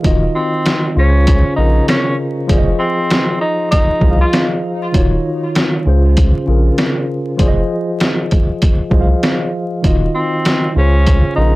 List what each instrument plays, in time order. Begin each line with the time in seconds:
0.02 sub bass D#1, tine electric piano D#3 D#4 F4 F#4, kick, closed hi-hat
0.06 tine electric piano D#5
0.35 tenor saxophone C4
0.66 snare, closed hi-hat
0.95 sub bass C#2, tine electric piano C#3 C#4 F4 G#4
0.99 tenor saxophone C#4, tine electric piano C5
1.27 kick, closed hi-hat
1.56 sub bass A#1, tine electric piano C#3 C#4 F4 G#4, tenor saxophone D#4
1.60 tine electric piano A#4
1.88 tenor saxophone C#4, snare, closed hi-hat
2.47 sub bass F1, tine electric piano F3 F4 G#4 C5, kick, closed hi-hat
2.51 tine electric piano D5
2.58 tine electric piano D#5
2.79 tenor saxophone C4
3.10 snare, closed hi-hat
3.41 tenor saxophone D#4
3.71 tenor saxophone D#4, kick, closed hi-hat
4.00 sub bass C2, tine electric piano F3 F4 G#4 C5, kick
4.04 tine electric piano D#5
4.11 tine electric piano F5
4.21 tenor saxophone F4
4.33 snare, closed hi-hat
4.92 sub bass D#1, tine electric piano D#3 D#4 F4 F#4, kick, closed hi-hat
4.96 tine electric piano C#5
5.55 snare, closed hi-hat
5.84 sub bass C#2, tine electric piano C#3 C#4 F4 G#4
5.89 tine electric piano C5
6.17 kick, closed hi-hat
6.45 sub bass A#1, tine electric piano C#3 C#4 F4 G#4
6.50 tine electric piano A#4
6.78 snare, closed hi-hat
7.37 sub bass F1, tine electric piano F3 F4 G#4 C5, kick, closed hi-hat
7.41 tine electric piano D5
7.48 tine electric piano D#5
8.00 snare, closed hi-hat
8.31 kick, closed hi-hat
8.62 kick, closed hi-hat
8.90 sub bass C2, tine electric piano F3 F4 G#4 C5, kick
8.94 tine electric piano D#5
9.01 tine electric piano F5
9.23 snare, closed hi-hat
9.82 sub bass D#1, tine electric piano D#3 D#4 F4 F#4, kick, closed hi-hat
9.86 tine electric piano D#5
10.15 tenor saxophone C4
10.45 snare, closed hi-hat
10.74 sub bass C#2, tine electric piano C#3 C#4 F4 G#4, tenor saxophone C#4
10.78 tine electric piano C5
11.07 kick, closed hi-hat
11.35 sub bass A#1, tine electric piano C#3 C#4 F4 G#4, tenor saxophone D#4
11.39 tine electric piano A#4